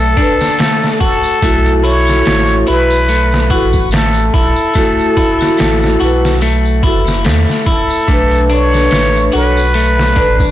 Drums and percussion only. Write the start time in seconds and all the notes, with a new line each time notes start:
0.00 tambourine
0.17 kick, open hi-hat
0.41 snare, tambourine, triangle
0.58 snare, open hi-hat, tambourine
0.82 snare, tambourine, triangle
1.01 kick, open hi-hat
1.23 tambourine
1.42 kick, open hi-hat, tambourine
1.65 closed hi-hat, tambourine
1.84 open hi-hat
2.06 snare, tambourine
2.25 snare, open hi-hat, tambourine
2.48 tambourine
2.67 open hi-hat
2.91 tambourine
3.08 open hi-hat, tambourine
3.32 snare, tambourine
3.50 kick, open hi-hat
3.73 kick, tambourine
3.91 snare, open hi-hat, tambourine
4.14 tambourine
4.34 kick, open hi-hat
4.56 tambourine
4.74 kick, open hi-hat, tambourine
4.99 tambourine
5.17 kick, open hi-hat
5.41 snare, tambourine
5.57 snare, open hi-hat, tambourine
5.81 snare, tambourine
6.00 open hi-hat
6.25 snare, tambourine, triangle
6.41 open hi-hat, tambourine
6.65 tambourine
6.83 kick, open hi-hat
7.07 snare, tambourine, triangle
7.24 snare, open hi-hat, tambourine
7.48 snare, tambourine, triangle
7.66 kick, open hi-hat
7.90 tambourine
8.08 kick, open hi-hat, tambourine
8.31 closed hi-hat, tambourine
8.49 open hi-hat
8.74 snare, tambourine
8.91 snare, open hi-hat, tambourine
9.16 tambourine
9.32 open hi-hat
9.57 tambourine
9.74 open hi-hat, tambourine
9.99 snare, tambourine
10.16 kick, open hi-hat
10.40 kick, tambourine